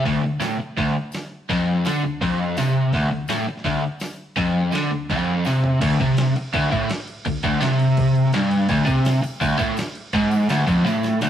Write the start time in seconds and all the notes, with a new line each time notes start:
0.05 D2, kick, open hi-hat
0.24 D2
0.40 A2, snare, open hi-hat, tambourine
0.60 muted overdriven electric guitar stroke
0.77 D2, kick, open hi-hat
0.88 snare
1.12 snare, open hi-hat, tambourine
1.49 F2, kick, open hi-hat
1.85 D3, snare, open hi-hat, tambourine
2.04 D2
2.21 F2, kick, open hi-hat
2.57 C3, snare, open hi-hat, tambourine
2.93 D2, kick, open hi-hat
3.11 D2
3.28 A2, snare, open hi-hat, tambourine
3.49 muted overdriven electric guitar stroke
3.57 snare
3.64 D2, kick, open hi-hat
3.75 snare
4.00 snare, open hi-hat, tambourine
4.37 F2, kick, open hi-hat
4.72 D3, snare, open hi-hat, tambourine
4.91 D2
5.10 F2, kick, open hi-hat
5.45 C3, snare, open hi-hat, tambourine
5.64 floor tom
5.81 D2, kick, crash
6.00 C3, kick, crash
6.17 snare, crash
6.36 muted overdriven electric guitar stroke, crash
6.53 D2, kick, crash
6.72 A2, kick, crash
6.89 snare, crash
7.00 snare
7.07 crash
7.25 D2, kick, crash
7.43 D2, kick, crash
7.61 C3, snare, crash
7.79 crash
7.97 kick, crash
8.15 crash
8.25 snare
8.33 G2, snare, crash
8.51 crash
8.69 D2, kick, crash
8.85 C3, kick, tambourine, crash
9.05 snare, tambourine, crash
9.22 muted overdriven electric guitar stroke, tambourine, crash
9.41 D2, kick, tambourine, crash
9.59 A2, kick, tambourine, crash
9.77 snare, tambourine, crash
9.88 snare
9.95 crash
10.12 G#2, kick, tambourine, crash
10.31 tambourine, crash
10.49 D2, snare, tambourine, crash
10.67 F2, kick, tambourine, crash
10.86 A2, snare, tambourine
11.03 snare, tambourine
11.21 D2, snare, tambourine